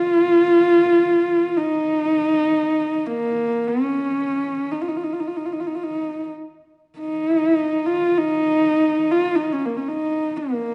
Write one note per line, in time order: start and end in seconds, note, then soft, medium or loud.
0.00 1.59 F4 loud
1.57 3.08 D#4 medium
3.07 3.69 A#3 medium
3.67 4.73 C#4 medium
4.71 4.83 D#4 medium
4.81 4.90 F4 medium
4.88 4.98 D#4 medium
4.97 5.06 F4 medium
5.04 5.15 D#4 medium
5.13 5.21 F4 medium
5.20 5.29 D#4 medium
5.27 5.38 F4 medium
5.37 5.47 D#4 medium
5.46 5.55 F4 medium
5.53 5.62 D#4 medium
5.60 5.69 F4 medium
5.67 5.77 D#4 medium
5.75 5.85 F4 medium
5.84 6.26 D#4 medium
6.99 7.88 D#4 medium
7.87 8.20 F4 medium
8.18 9.13 D#4 medium
9.11 9.37 F4 medium
9.36 9.54 D#4 medium
9.53 9.67 C#4 medium
9.66 9.79 A#3 medium
9.77 9.90 C#4 medium
9.89 10.39 D#4 medium
10.37 10.74 A#3 medium